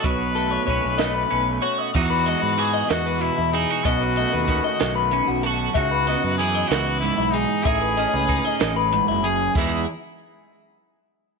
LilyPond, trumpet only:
\new Staff \with { instrumentName = "Trumpet" } { \time 6/8 \key e \major \tempo 4. = 63 b'2~ b'8 r8 | fis'4 gis'8 fis'8 e'8 dis'8 | fis'2 r4 | fis'4 gis'8 fis'8 e'8 dis'8 |
gis'2 r8 gis'8 | e'8 r2 r8 | }